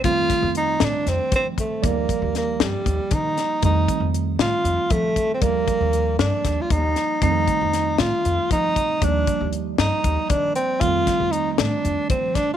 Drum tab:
HH |xxxxxxx|xxxxxxx|xxxxxxx|xxxxxxx|
SD |-o-oo--|--oo--o|---o---|---oo-o|
BD |oo---oo|oo--oo-|oo---oo|oo--oo-|

HH |xxxxxxx|xxxxxxx|xxxxxxx|
SD |--oo---|---o---|-o-o--o|
BD |oo---oo|oo--oo-|oo---oo|